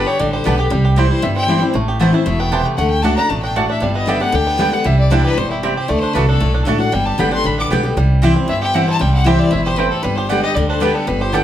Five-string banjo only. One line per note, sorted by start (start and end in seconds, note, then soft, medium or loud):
0.00 0.17 B3 medium
0.00 0.30 D4 medium
0.07 0.32 G4 medium
0.20 0.56 G3 medium
0.33 0.58 G4 medium
0.46 0.71 B3 medium
0.59 0.71 G4 medium
0.71 0.97 G3 medium
0.85 1.21 G4 medium
0.98 1.22 G3 medium
1.11 1.47 E4 medium
1.23 1.59 G3 medium
1.36 1.72 C4 medium
1.49 1.75 G4 medium
1.62 1.75 G3 medium
1.75 1.99 A3 medium
1.88 2.24 G4 medium
2.01 2.25 A3 medium
2.14 2.50 E4 medium
2.27 2.63 A3 medium
2.40 2.76 B3 medium
2.53 2.78 G4 medium
2.65 2.77 A3 medium
2.78 3.15 A3 medium
3.05 3.17 D4 medium
3.18 3.43 D4 medium
3.30 3.67 A3 medium
3.43 3.56 D4 medium
3.56 3.70 D4 medium
3.70 4.21 D4 medium
3.82 4.18 G3 medium
3.95 4.31 B3 medium
4.08 4.33 G4 medium
4.21 5.11 D4 medium
4.34 4.70 G4 medium
4.47 4.72 B3 medium
4.60 4.86 D3 medium
4.73 4.86 B3 medium
4.85 5.22 G3 medium
5.12 5.66 D4 medium
5.25 5.50 G4 medium
5.38 5.74 G3 medium
5.51 5.76 G4 medium
5.63 5.89 C4 medium
5.77 5.90 G4 medium
5.89 6.26 A3 medium
6.03 6.14 D4 medium
6.15 6.28 D4 medium
6.29 6.53 D4 medium
6.41 6.78 A3 medium
6.54 6.66 D4 medium
6.67 6.79 D4 medium
6.80 6.93 D4 medium
6.93 7.18 G3 medium
7.07 7.43 G4 medium
7.19 7.44 G3 medium
7.32 7.68 D4 medium
7.45 7.82 G3 medium
7.58 7.94 B3 medium
7.71 7.97 G4 medium
7.85 7.96 G3 medium
7.97 9.00 G3 medium
8.23 8.62 G4 medium
8.36 8.72 C4 medium
8.49 8.74 E4 medium
8.62 9.26 G4 medium
8.75 9.11 E4 medium
8.88 9.24 C4 medium
9.01 10.04 G3 medium
9.27 9.66 G4 medium
9.40 9.76 C4 medium
9.53 9.77 E4 medium
9.66 10.17 G4 medium
9.79 10.04 E4 medium
9.92 10.04 C4 medium
10.04 10.30 G3 medium
10.18 10.43 G4 medium
10.30 10.56 G3 medium
10.44 11.21 G4 medium
10.56 10.95 G3 medium
10.70 11.06 D4 medium
10.82 11.18 B3 medium
10.95 11.07 G3 medium
11.08 11.34 G3 medium
11.21 11.44 G4 medium
11.34 11.44 G3 medium